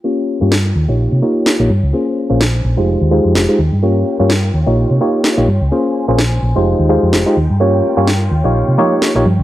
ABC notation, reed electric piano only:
X:1
M:4/4
L:1/16
Q:"Swing 16ths" 1/4=127
K:Ebmix
V:1 name="Reed electric piano"
[B,DFGd]3 [B,DFGd] z3 [B,EFGd]3 [B,EFGd]3 [B,EFGd] z2 | [B,DFAc]3 [B,DFAc] z3 [A,EFGc]3 [A,EFGc]3 [A,EFGc] z2 | [B,DFGd]3 [B,DFGd] z3 [B,EFGd]3 [B,EFGd]3 [B,EFGd] z2 | [B,DFAc]3 [B,DFAc] z3 [A,EFGc]3 [A,EFGc]3 [A,EFGc] z2 |
[B,DFGd]3 [B,DFGd] z3 [B,EFGd]3 [B,EFGd]3 [B,EFGd] z2 |]